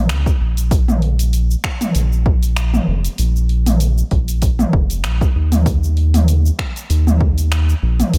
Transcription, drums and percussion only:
0.09 finger snap medium
0.09 open hi-hat medium
0.09 shaker medium
0.26 kick loud
0.26 shaker soft
0.57 open hi-hat soft
0.57 shaker medium
0.71 kick loud
0.71 open hi-hat medium
0.71 shaker medium
0.88 mid tom medium
0.88 shaker soft
1.02 open hi-hat soft
1.19 open hi-hat soft
1.19 shaker medium
1.33 open hi-hat medium
1.33 shaker medium
1.51 shaker soft
1.64 finger snap medium
1.64 kick medium
1.64 open hi-hat soft
1.81 mid tom medium
1.81 open hi-hat soft
1.81 shaker medium
1.95 open hi-hat medium
1.95 shaker medium
2.12 shaker soft
2.26 kick loud
2.43 open hi-hat soft
2.43 shaker medium
2.56 finger snap medium
2.56 open hi-hat soft
2.56 shaker medium
2.74 mid tom medium
2.74 shaker soft
3.05 open hi-hat soft
3.05 shaker medium
3.18 open hi-hat medium
3.18 shaker medium
3.36 shaker soft
3.49 open hi-hat soft
3.66 mid tom medium
3.66 open hi-hat soft
3.66 shaker medium
3.80 open hi-hat medium
3.80 shaker medium
3.98 shaker soft
4.11 kick medium
4.11 open hi-hat soft
4.28 open hi-hat soft
4.28 shaker medium
4.42 kick medium
4.42 open hi-hat medium
4.42 shaker medium
4.59 mid tom medium
4.59 shaker soft
4.73 kick loud
4.90 open hi-hat soft
4.90 shaker medium
5.04 finger snap medium
5.04 open hi-hat soft
5.04 shaker medium
5.21 kick loud
5.21 shaker soft
5.52 mid tom medium
5.52 open hi-hat soft
5.52 shaker medium
5.66 kick loud
5.66 open hi-hat soft
5.66 shaker medium
5.84 shaker soft
5.97 open hi-hat soft
6.14 mid tom medium
6.14 open hi-hat soft
6.14 shaker medium
6.28 open hi-hat medium
6.28 shaker medium
6.46 shaker soft
6.59 finger snap medium
6.59 kick medium
6.59 open hi-hat soft
6.76 open hi-hat soft
6.76 shaker medium
6.90 open hi-hat medium
6.90 shaker medium
7.07 mid tom medium
7.07 shaker soft
7.21 kick loud
7.38 open hi-hat soft
7.38 shaker medium
7.52 finger snap medium
7.52 open hi-hat medium
7.52 shaker medium
7.69 shaker soft
8.00 mid tom medium
8.00 open hi-hat soft
8.00 shaker medium
8.14 open hi-hat medium
8.14 shaker medium

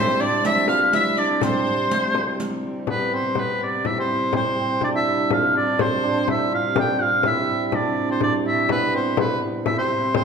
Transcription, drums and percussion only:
0.45 riq medium
0.68 frame drum medium
0.93 riq medium
0.93 frame drum soft
1.41 riq medium
1.41 frame drum medium
1.67 riq soft
1.91 riq medium
2.15 frame drum medium
2.40 riq medium
2.63 frame drum soft
2.87 frame drum medium
3.35 frame drum medium
3.85 frame drum medium
4.09 frame drum soft
4.33 frame drum medium
4.81 frame drum medium
5.30 frame drum medium
5.55 frame drum soft
5.79 frame drum medium
6.28 frame drum medium
6.76 frame drum medium
7.00 frame drum soft
7.23 frame drum medium
7.48 frame drum soft
7.72 frame drum medium
7.97 frame drum soft
8.21 frame drum medium
8.45 frame drum soft
8.69 frame drum medium
9.17 frame drum medium
9.66 frame drum medium
9.91 frame drum soft
10.14 frame drum loud

